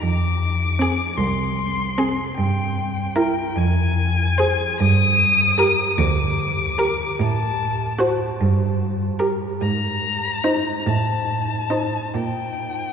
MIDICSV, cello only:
0, 0, Header, 1, 2, 480
1, 0, Start_track
1, 0, Tempo, 774194
1, 19, Time_signature, 6, 3, 24, 8
1, 978, Tempo, 794702
1, 2418, Tempo, 841515
1, 2898, Tempo, 788436
1, 3858, Tempo, 808625
1, 5778, Tempo, 835655
1, 6738, Tempo, 869565
1, 7645, End_track
2, 0, Start_track
2, 0, Title_t, "Cello"
2, 0, Program_c, 0, 42
2, 13, Note_on_c, 0, 41, 63
2, 602, Note_off_c, 0, 41, 0
2, 731, Note_on_c, 0, 36, 72
2, 1324, Note_off_c, 0, 36, 0
2, 1461, Note_on_c, 0, 43, 72
2, 2044, Note_off_c, 0, 43, 0
2, 2173, Note_on_c, 0, 41, 74
2, 2768, Note_off_c, 0, 41, 0
2, 2897, Note_on_c, 0, 43, 85
2, 3482, Note_off_c, 0, 43, 0
2, 3617, Note_on_c, 0, 38, 77
2, 4211, Note_off_c, 0, 38, 0
2, 4340, Note_on_c, 0, 45, 75
2, 4930, Note_off_c, 0, 45, 0
2, 5062, Note_on_c, 0, 43, 90
2, 5645, Note_off_c, 0, 43, 0
2, 5775, Note_on_c, 0, 44, 80
2, 6363, Note_off_c, 0, 44, 0
2, 6495, Note_on_c, 0, 45, 73
2, 7082, Note_off_c, 0, 45, 0
2, 7210, Note_on_c, 0, 46, 67
2, 7645, Note_off_c, 0, 46, 0
2, 7645, End_track
0, 0, End_of_file